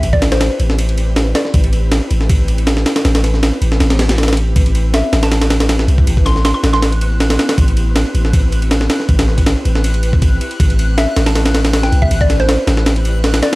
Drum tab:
RD |x---x-x-x---x---x-x-x---x---x---|x-x-x---x---x---x---x-x-x---x-x-|x-x-x---x---x---x-x-x-x-xxxxx---|x-x-x---x---x-x-x-x-x-x-x---x---|
SD |----o-o-o-----o---------o---o-o-|--------o-----o---------o-o-o-o-|o-o-o-o-o-----o-o-o-o-o-oooo----|--------o---o-o-o-o-o-o-o-o-----|
BD |--o-----------------------------|o---------------o---------------|--------------------------------|o-----------------------------o-|

RD |x---x---x---x---x-x-x---x-x-x-x-|x-x-x---x---x---x---x-x-x---x---|x-x---x-x---x---x-x-x---x---x-x-|x-x-x---x---x-x-x-x-x-x-x---x---|
SD |----o-o-o---o-o-o-------o-o-o-o-|--------o-----o---------o-o-o-o-|--o-o---o-----o-----------------|--------o---o-o-o-o-o-o-o-o-----|
BD |--o-----------------------------|o---------------o---------------|o-----o---------------o-o-------|o-----------------------------o-|

RD |x---x---x---x---x-x-x---x-x-x---|
SD |----o-o-o---o-o-o-------o-o-o---|
BD |--o-----------------------------|